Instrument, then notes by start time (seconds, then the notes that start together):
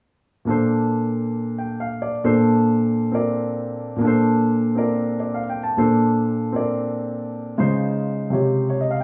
grand piano
0.45 A#2 A#3 D4 A4
0.50 C5
1.58 G5
1.80 F5
2.02 D5
2.24 A#2 A#3 D4 A4 C5
3.12 C4 F4 A#4 D5
3.96 A#2 A#3
4.01 D4 A4
4.07 C5
4.75 C4 F4 A#4 D5
5.20 D5
5.34 F5
5.50 G5
5.63 A5
5.77 A#2 A#3 D4 A4 C5
6.52 C4 F4 A#4 D5
7.58 C#3 G#3 D#4 F4 C5
8.30 C3 F4 G4 C#5
8.70 C#5
8.81 D#5
8.91 F5